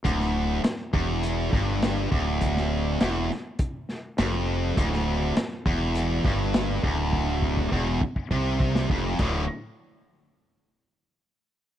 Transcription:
<<
  \new Staff \with { instrumentName = "Distorted electric guitar" } { \clef bass \time 4/4 \key d \minor \tempo 4 = 102 d,4 r8 e,4 g,4 d,8~ | d,4 e,8 r4. f,4 | d,4 r8 e,4 g,4 d,8~ | d,4 e,8 r8 c4 f,8 <d, a, d>8 |
r1 | }
  \new Staff \with { instrumentName = "Fingered electric bass" } { \clef bass \time 4/4 \key d \minor d,,4 r8 e,,4 g,,4 d,,8~ | d,,4 e,,8 r4. f,,4 | d,,4 r8 e,,4 g,,4 d,,8~ | d,,4 e,,8 r8 c,4 f,,8 d,,8 |
r1 | }
  \new DrumStaff \with { instrumentName = "Drums" } \drummode { \time 4/4 <hh bd>16 sn8. <hh sn>8 bd8 hh8 <bd sn>8 <hh sn>8 bd8 | <hh bd>16 sn8. <hh sn>8 sn8 <hh bd>8 sn8 <hh sn>4 | <hh bd>16 sn8. <hh sn>8 bd8 hh8 <bd sn>8 <hh sn>8 bd8 | bd8 bd16 bd16 bd8 bd16 bd16 bd8 bd16 sn16 bd8 <cymc bd>8 |
r4 r4 r4 r4 | }
>>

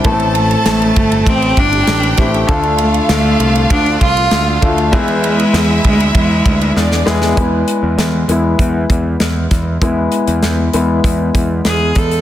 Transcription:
<<
  \new Staff \with { instrumentName = "Violin section" } { \time 4/4 \key e \phrygian \tempo 4 = 98 <a' a''>2 <g' g''>2 | <f' f''>1 | <e' e''>2. <d' d''>4 | r1 |
r1 | }
  \new Staff \with { instrumentName = "Grand piano" } { \time 4/4 \key e \phrygian <a, a b c' e' a'>4. r2 <a c' e' g'>8 | <d a d' f' a'>4. r2 <a d' f' a'>8 | <e gis b e' gis'>4. r2 <gis b e' gis'>8 | <gis b e'>4. <gis b e'>8 r2 |
<gis b e'>4. <gis b e'>8 r2 | }
  \new Staff \with { instrumentName = "Cello" } { \time 4/4 \key e \phrygian r8 a8 a4 c'8 d'4 r8 | r8 a8 a4 d'8 f'4 r8 | r8 gis4 gis8 gis4. r8 | r1 |
r2. gis'8 a'8 | }
  \new Staff \with { instrumentName = "Picked electric bass" } { \clef bass \time 4/4 \key e \phrygian a,,4 a,,8 g,,8 a,,8 g,,8 a,,8 a,,8 | d,4 d,8 c,8 d,8 c,8 d,8 d,8 | e,4 e,8 d,8 e,8 d,8 e,8 e,8 | e,8 r16 e,16 e,8 e,8 e,8 e,8 e,8 e,8 |
e,8 r16 e,16 e,8 e,8 e,8 e,8 e,8 e,8 | }
  \new DrumStaff \with { instrumentName = "Drums" } \drummode { \time 4/4 <bd cymr>16 cymr16 cymr16 cymr16 <cymr sn>16 cymr16 <bd cymr>16 cymr16 <bd cymr>16 cymr16 <bd cymr>16 cymr16 <cymr sn>16 cymr16 <bd cymr sn>16 cymr16 | <bd cymr>16 cymr16 cymr16 cymr16 <cymr sn>8 cymr16 cymr16 <bd cymr>16 cymr16 <bd cymr>16 cymr16 <cymr sn>8 <bd cymr>16 cymr16 | <bd cymr>16 cymr16 cymr16 cymr16 <cymr sn>8 <bd cymr>16 cymr16 <bd cymr>8 <bd cymr>16 cymr16 sn16 sn16 sn16 sn16 | <hh bd>8 hh8 <hh sn>8 hh8 <hh bd>8 <hh bd>8 <hh sn>8 <hh bd sn>8 |
<hh bd>8 hh16 hh16 <hh sn>8 hh8 <hh bd>8 <hh bd>8 <hh sn>8 <hh bd>16 hh16 | }
>>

